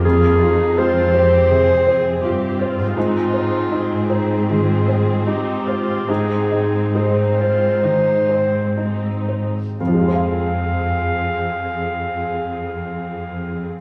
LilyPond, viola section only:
\new Staff \with { instrumentName = "Viola section" } { \time 4/4 \key f \minor \tempo 4 = 72 << { f'8 ees'8 f'8 g'8 aes'8 aes'8 g'8 f'8 | ees'4 aes'4 aes'4 ees'8 f'8 | ees'4 ees'8 f'8 ees'8 c'8 c'8. r16 | aes'1 | } \\ { bes4 c'2 c'4 | c'1~ | c'2 ees'4 ees'8. r16 | c'1 | } >> }